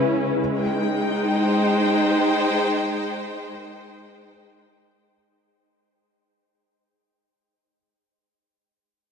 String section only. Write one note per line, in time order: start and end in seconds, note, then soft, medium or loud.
0.00 0.40 C#3 medium
0.00 0.40 C#4 medium
0.00 0.37 E4 medium
0.00 0.37 B4 medium
0.40 5.13 G#3 medium
0.59 5.15 G5 medium
0.65 5.14 D#4 medium
1.26 5.13 C5 medium